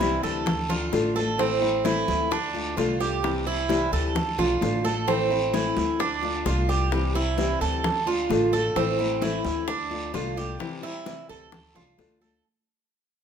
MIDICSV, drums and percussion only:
0, 0, Header, 1, 2, 480
1, 0, Start_track
1, 0, Tempo, 460829
1, 1447, Time_signature, 4, 2, 24, 8
1, 13788, End_track
2, 0, Start_track
2, 0, Title_t, "Drums"
2, 0, Note_on_c, 9, 63, 94
2, 5, Note_on_c, 9, 73, 76
2, 7, Note_on_c, 9, 60, 60
2, 104, Note_off_c, 9, 63, 0
2, 109, Note_off_c, 9, 73, 0
2, 112, Note_off_c, 9, 60, 0
2, 241, Note_on_c, 9, 63, 34
2, 246, Note_on_c, 9, 60, 35
2, 248, Note_on_c, 9, 73, 70
2, 345, Note_off_c, 9, 63, 0
2, 350, Note_off_c, 9, 60, 0
2, 352, Note_off_c, 9, 73, 0
2, 480, Note_on_c, 9, 63, 37
2, 480, Note_on_c, 9, 64, 96
2, 484, Note_on_c, 9, 74, 75
2, 489, Note_on_c, 9, 60, 74
2, 585, Note_off_c, 9, 63, 0
2, 585, Note_off_c, 9, 64, 0
2, 588, Note_off_c, 9, 74, 0
2, 593, Note_off_c, 9, 60, 0
2, 724, Note_on_c, 9, 63, 33
2, 724, Note_on_c, 9, 64, 73
2, 727, Note_on_c, 9, 60, 35
2, 828, Note_off_c, 9, 63, 0
2, 828, Note_off_c, 9, 64, 0
2, 831, Note_off_c, 9, 60, 0
2, 965, Note_on_c, 9, 63, 80
2, 966, Note_on_c, 9, 60, 32
2, 966, Note_on_c, 9, 61, 79
2, 968, Note_on_c, 9, 73, 76
2, 1069, Note_off_c, 9, 63, 0
2, 1071, Note_off_c, 9, 60, 0
2, 1071, Note_off_c, 9, 61, 0
2, 1073, Note_off_c, 9, 73, 0
2, 1205, Note_on_c, 9, 63, 92
2, 1211, Note_on_c, 9, 73, 69
2, 1309, Note_off_c, 9, 63, 0
2, 1315, Note_off_c, 9, 73, 0
2, 1446, Note_on_c, 9, 63, 35
2, 1450, Note_on_c, 9, 74, 70
2, 1453, Note_on_c, 9, 60, 67
2, 1550, Note_off_c, 9, 63, 0
2, 1554, Note_off_c, 9, 74, 0
2, 1557, Note_off_c, 9, 60, 0
2, 1685, Note_on_c, 9, 63, 33
2, 1692, Note_on_c, 9, 60, 36
2, 1789, Note_off_c, 9, 63, 0
2, 1796, Note_off_c, 9, 60, 0
2, 1926, Note_on_c, 9, 63, 99
2, 1927, Note_on_c, 9, 73, 74
2, 1933, Note_on_c, 9, 60, 57
2, 2030, Note_off_c, 9, 63, 0
2, 2031, Note_off_c, 9, 73, 0
2, 2037, Note_off_c, 9, 60, 0
2, 2168, Note_on_c, 9, 63, 91
2, 2169, Note_on_c, 9, 73, 73
2, 2174, Note_on_c, 9, 60, 34
2, 2272, Note_off_c, 9, 63, 0
2, 2274, Note_off_c, 9, 73, 0
2, 2279, Note_off_c, 9, 60, 0
2, 2409, Note_on_c, 9, 63, 39
2, 2411, Note_on_c, 9, 74, 73
2, 2415, Note_on_c, 9, 60, 78
2, 2513, Note_off_c, 9, 63, 0
2, 2515, Note_off_c, 9, 74, 0
2, 2519, Note_off_c, 9, 60, 0
2, 2652, Note_on_c, 9, 63, 36
2, 2656, Note_on_c, 9, 60, 34
2, 2756, Note_off_c, 9, 63, 0
2, 2760, Note_off_c, 9, 60, 0
2, 2889, Note_on_c, 9, 73, 73
2, 2890, Note_on_c, 9, 63, 88
2, 2897, Note_on_c, 9, 60, 35
2, 2897, Note_on_c, 9, 61, 78
2, 2993, Note_off_c, 9, 73, 0
2, 2994, Note_off_c, 9, 63, 0
2, 3001, Note_off_c, 9, 60, 0
2, 3001, Note_off_c, 9, 61, 0
2, 3128, Note_on_c, 9, 63, 39
2, 3133, Note_on_c, 9, 73, 73
2, 3232, Note_off_c, 9, 63, 0
2, 3237, Note_off_c, 9, 73, 0
2, 3372, Note_on_c, 9, 63, 32
2, 3375, Note_on_c, 9, 74, 72
2, 3376, Note_on_c, 9, 60, 73
2, 3476, Note_off_c, 9, 63, 0
2, 3480, Note_off_c, 9, 74, 0
2, 3481, Note_off_c, 9, 60, 0
2, 3605, Note_on_c, 9, 63, 31
2, 3620, Note_on_c, 9, 60, 33
2, 3709, Note_off_c, 9, 63, 0
2, 3724, Note_off_c, 9, 60, 0
2, 3846, Note_on_c, 9, 63, 97
2, 3853, Note_on_c, 9, 73, 78
2, 3854, Note_on_c, 9, 60, 60
2, 3950, Note_off_c, 9, 63, 0
2, 3957, Note_off_c, 9, 73, 0
2, 3958, Note_off_c, 9, 60, 0
2, 4090, Note_on_c, 9, 63, 37
2, 4093, Note_on_c, 9, 60, 34
2, 4097, Note_on_c, 9, 73, 69
2, 4194, Note_off_c, 9, 63, 0
2, 4197, Note_off_c, 9, 60, 0
2, 4201, Note_off_c, 9, 73, 0
2, 4327, Note_on_c, 9, 63, 37
2, 4327, Note_on_c, 9, 64, 87
2, 4332, Note_on_c, 9, 60, 72
2, 4335, Note_on_c, 9, 74, 74
2, 4431, Note_off_c, 9, 63, 0
2, 4431, Note_off_c, 9, 64, 0
2, 4436, Note_off_c, 9, 60, 0
2, 4439, Note_off_c, 9, 74, 0
2, 4567, Note_on_c, 9, 63, 36
2, 4567, Note_on_c, 9, 64, 76
2, 4575, Note_on_c, 9, 60, 35
2, 4671, Note_off_c, 9, 63, 0
2, 4671, Note_off_c, 9, 64, 0
2, 4679, Note_off_c, 9, 60, 0
2, 4805, Note_on_c, 9, 63, 80
2, 4812, Note_on_c, 9, 73, 69
2, 4814, Note_on_c, 9, 60, 34
2, 4814, Note_on_c, 9, 61, 82
2, 4909, Note_off_c, 9, 63, 0
2, 4916, Note_off_c, 9, 73, 0
2, 4919, Note_off_c, 9, 60, 0
2, 4919, Note_off_c, 9, 61, 0
2, 5047, Note_on_c, 9, 63, 96
2, 5056, Note_on_c, 9, 73, 66
2, 5151, Note_off_c, 9, 63, 0
2, 5160, Note_off_c, 9, 73, 0
2, 5290, Note_on_c, 9, 63, 33
2, 5294, Note_on_c, 9, 60, 73
2, 5299, Note_on_c, 9, 74, 72
2, 5394, Note_off_c, 9, 63, 0
2, 5398, Note_off_c, 9, 60, 0
2, 5403, Note_off_c, 9, 74, 0
2, 5530, Note_on_c, 9, 63, 35
2, 5534, Note_on_c, 9, 60, 35
2, 5634, Note_off_c, 9, 63, 0
2, 5638, Note_off_c, 9, 60, 0
2, 5766, Note_on_c, 9, 63, 96
2, 5772, Note_on_c, 9, 60, 53
2, 5777, Note_on_c, 9, 73, 76
2, 5870, Note_off_c, 9, 63, 0
2, 5876, Note_off_c, 9, 60, 0
2, 5881, Note_off_c, 9, 73, 0
2, 6006, Note_on_c, 9, 63, 101
2, 6011, Note_on_c, 9, 60, 31
2, 6014, Note_on_c, 9, 73, 67
2, 6110, Note_off_c, 9, 63, 0
2, 6115, Note_off_c, 9, 60, 0
2, 6118, Note_off_c, 9, 73, 0
2, 6248, Note_on_c, 9, 63, 37
2, 6251, Note_on_c, 9, 60, 77
2, 6252, Note_on_c, 9, 74, 73
2, 6352, Note_off_c, 9, 63, 0
2, 6355, Note_off_c, 9, 60, 0
2, 6356, Note_off_c, 9, 74, 0
2, 6489, Note_on_c, 9, 63, 34
2, 6490, Note_on_c, 9, 60, 34
2, 6593, Note_off_c, 9, 63, 0
2, 6594, Note_off_c, 9, 60, 0
2, 6728, Note_on_c, 9, 60, 32
2, 6728, Note_on_c, 9, 61, 81
2, 6728, Note_on_c, 9, 63, 85
2, 6730, Note_on_c, 9, 73, 71
2, 6832, Note_off_c, 9, 60, 0
2, 6832, Note_off_c, 9, 61, 0
2, 6832, Note_off_c, 9, 63, 0
2, 6834, Note_off_c, 9, 73, 0
2, 6966, Note_on_c, 9, 63, 38
2, 6971, Note_on_c, 9, 73, 77
2, 7070, Note_off_c, 9, 63, 0
2, 7075, Note_off_c, 9, 73, 0
2, 7206, Note_on_c, 9, 63, 34
2, 7210, Note_on_c, 9, 60, 68
2, 7214, Note_on_c, 9, 74, 69
2, 7310, Note_off_c, 9, 63, 0
2, 7314, Note_off_c, 9, 60, 0
2, 7318, Note_off_c, 9, 74, 0
2, 7446, Note_on_c, 9, 63, 33
2, 7452, Note_on_c, 9, 60, 35
2, 7550, Note_off_c, 9, 63, 0
2, 7557, Note_off_c, 9, 60, 0
2, 7684, Note_on_c, 9, 63, 93
2, 7691, Note_on_c, 9, 60, 57
2, 7694, Note_on_c, 9, 73, 79
2, 7788, Note_off_c, 9, 63, 0
2, 7795, Note_off_c, 9, 60, 0
2, 7798, Note_off_c, 9, 73, 0
2, 7925, Note_on_c, 9, 63, 38
2, 7932, Note_on_c, 9, 73, 73
2, 7933, Note_on_c, 9, 60, 34
2, 8029, Note_off_c, 9, 63, 0
2, 8036, Note_off_c, 9, 73, 0
2, 8037, Note_off_c, 9, 60, 0
2, 8168, Note_on_c, 9, 63, 39
2, 8168, Note_on_c, 9, 64, 91
2, 8170, Note_on_c, 9, 60, 76
2, 8177, Note_on_c, 9, 74, 73
2, 8272, Note_off_c, 9, 63, 0
2, 8272, Note_off_c, 9, 64, 0
2, 8274, Note_off_c, 9, 60, 0
2, 8281, Note_off_c, 9, 74, 0
2, 8406, Note_on_c, 9, 63, 36
2, 8411, Note_on_c, 9, 60, 33
2, 8511, Note_off_c, 9, 63, 0
2, 8515, Note_off_c, 9, 60, 0
2, 8641, Note_on_c, 9, 63, 85
2, 8649, Note_on_c, 9, 73, 67
2, 8651, Note_on_c, 9, 60, 32
2, 8651, Note_on_c, 9, 61, 83
2, 8745, Note_off_c, 9, 63, 0
2, 8753, Note_off_c, 9, 73, 0
2, 8755, Note_off_c, 9, 60, 0
2, 8755, Note_off_c, 9, 61, 0
2, 8882, Note_on_c, 9, 63, 91
2, 8889, Note_on_c, 9, 73, 65
2, 8986, Note_off_c, 9, 63, 0
2, 8993, Note_off_c, 9, 73, 0
2, 9121, Note_on_c, 9, 63, 36
2, 9125, Note_on_c, 9, 74, 79
2, 9127, Note_on_c, 9, 60, 70
2, 9225, Note_off_c, 9, 63, 0
2, 9229, Note_off_c, 9, 74, 0
2, 9231, Note_off_c, 9, 60, 0
2, 9361, Note_on_c, 9, 63, 32
2, 9366, Note_on_c, 9, 60, 35
2, 9466, Note_off_c, 9, 63, 0
2, 9470, Note_off_c, 9, 60, 0
2, 9599, Note_on_c, 9, 63, 98
2, 9605, Note_on_c, 9, 60, 63
2, 9609, Note_on_c, 9, 73, 78
2, 9703, Note_off_c, 9, 63, 0
2, 9709, Note_off_c, 9, 60, 0
2, 9713, Note_off_c, 9, 73, 0
2, 9838, Note_on_c, 9, 63, 96
2, 9844, Note_on_c, 9, 60, 36
2, 9851, Note_on_c, 9, 73, 73
2, 9942, Note_off_c, 9, 63, 0
2, 9948, Note_off_c, 9, 60, 0
2, 9955, Note_off_c, 9, 73, 0
2, 10079, Note_on_c, 9, 63, 37
2, 10080, Note_on_c, 9, 60, 83
2, 10083, Note_on_c, 9, 74, 76
2, 10183, Note_off_c, 9, 63, 0
2, 10184, Note_off_c, 9, 60, 0
2, 10187, Note_off_c, 9, 74, 0
2, 10320, Note_on_c, 9, 63, 37
2, 10325, Note_on_c, 9, 60, 35
2, 10425, Note_off_c, 9, 63, 0
2, 10430, Note_off_c, 9, 60, 0
2, 10558, Note_on_c, 9, 63, 86
2, 10561, Note_on_c, 9, 60, 32
2, 10561, Note_on_c, 9, 61, 81
2, 10565, Note_on_c, 9, 73, 76
2, 10663, Note_off_c, 9, 63, 0
2, 10665, Note_off_c, 9, 60, 0
2, 10665, Note_off_c, 9, 61, 0
2, 10669, Note_off_c, 9, 73, 0
2, 10799, Note_on_c, 9, 63, 38
2, 10805, Note_on_c, 9, 73, 71
2, 10904, Note_off_c, 9, 63, 0
2, 10910, Note_off_c, 9, 73, 0
2, 11041, Note_on_c, 9, 63, 36
2, 11044, Note_on_c, 9, 60, 73
2, 11045, Note_on_c, 9, 74, 79
2, 11146, Note_off_c, 9, 63, 0
2, 11148, Note_off_c, 9, 60, 0
2, 11149, Note_off_c, 9, 74, 0
2, 11282, Note_on_c, 9, 63, 33
2, 11286, Note_on_c, 9, 60, 36
2, 11386, Note_off_c, 9, 63, 0
2, 11390, Note_off_c, 9, 60, 0
2, 11522, Note_on_c, 9, 73, 78
2, 11523, Note_on_c, 9, 60, 58
2, 11523, Note_on_c, 9, 63, 97
2, 11626, Note_off_c, 9, 73, 0
2, 11627, Note_off_c, 9, 60, 0
2, 11627, Note_off_c, 9, 63, 0
2, 11762, Note_on_c, 9, 60, 32
2, 11766, Note_on_c, 9, 73, 67
2, 11767, Note_on_c, 9, 63, 35
2, 11866, Note_off_c, 9, 60, 0
2, 11870, Note_off_c, 9, 73, 0
2, 11871, Note_off_c, 9, 63, 0
2, 12002, Note_on_c, 9, 60, 75
2, 12003, Note_on_c, 9, 63, 35
2, 12003, Note_on_c, 9, 64, 89
2, 12005, Note_on_c, 9, 74, 76
2, 12107, Note_off_c, 9, 60, 0
2, 12107, Note_off_c, 9, 63, 0
2, 12107, Note_off_c, 9, 64, 0
2, 12109, Note_off_c, 9, 74, 0
2, 12244, Note_on_c, 9, 60, 33
2, 12244, Note_on_c, 9, 63, 37
2, 12244, Note_on_c, 9, 64, 75
2, 12348, Note_off_c, 9, 60, 0
2, 12348, Note_off_c, 9, 63, 0
2, 12348, Note_off_c, 9, 64, 0
2, 12484, Note_on_c, 9, 63, 86
2, 12485, Note_on_c, 9, 60, 30
2, 12485, Note_on_c, 9, 61, 83
2, 12488, Note_on_c, 9, 73, 74
2, 12588, Note_off_c, 9, 63, 0
2, 12590, Note_off_c, 9, 60, 0
2, 12590, Note_off_c, 9, 61, 0
2, 12592, Note_off_c, 9, 73, 0
2, 12721, Note_on_c, 9, 63, 94
2, 12729, Note_on_c, 9, 73, 73
2, 12825, Note_off_c, 9, 63, 0
2, 12833, Note_off_c, 9, 73, 0
2, 13788, End_track
0, 0, End_of_file